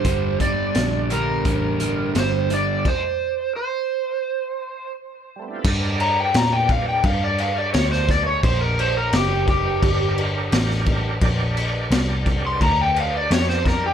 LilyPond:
<<
  \new Staff \with { instrumentName = "Electric slide guitar" } { \time 4/4 \key g \minor \tempo 4 = 86 c''8 d''4 bes'4. c''8 d''8 | c''4 c''2 r4 | r8 bes''16 g''16 bes''16 g''16 f''16 g''16 f''16 d''16 f''16 d''16 cis''16 c''16 d''16 cis''16 | c''16 bes'16 c''16 bes'16 g'8 g'4 r4. |
r4. r16 c'''16 bes''16 g''16 f''16 d''16 cis''16 c''16 bes'16 g'16 | }
  \new Staff \with { instrumentName = "Tonewheel organ" } { \time 4/4 \key g \minor << { r1 | r1 | <d' g' bes' d''>1 | <d' g' bes'>1 |
<d' g' bes' d''>1 | } \\ { r1 | r1 | <g a b c' d' e' f' g' a' b' c''>8 r2. r8 | r1 |
r1 | } >> }
  \new Staff \with { instrumentName = "Overdriven electric guitar" } { \clef bass \time 4/4 \key g \minor <g, d g>8 <g, d g>8 <g, d g>8 <g, d g>8 <g, d g>8 <g, d g>8 <g, d g>8 <g, d g>8 | r1 | r1 | r1 |
r1 | }
  \new Staff \with { instrumentName = "Picked electric bass" } { \clef bass \time 4/4 \key g \minor g,,4 bes,,4 a,,4 g,,4 | r1 | g,4 bes,4 g,4 d,4 | bes,,4 fis,,4 g,,4 a,,4 |
bes,,4 c,4 d,4 f,4 | }
  \new DrumStaff \with { instrumentName = "Drums" } \drummode { \time 4/4 <hh bd>8 <hh bd>8 <hh sn>8 hh8 <hh bd>8 hh8 <hh sn>8 hh8 | <cymc bd>4 r4 r4 r4 | <cymc bd>8 cymc8 <cymc sn>8 <cymc bd>8 <cymc bd>8 cymc8 <cymc sn>16 sn16 <cymc bd sn>8 | <cymc bd>8 cymc8 <cymc sn>8 <cymc bd>8 <cymc bd>8 cymc8 <cymc sn>16 sn16 <cymc bd>8 |
<cymc bd>8 cymc8 <cymc sn>8 <cymc bd>8 <cymc bd>8 cymc8 <cymc sn>16 sn16 <cymc bd sn>8 | }
>>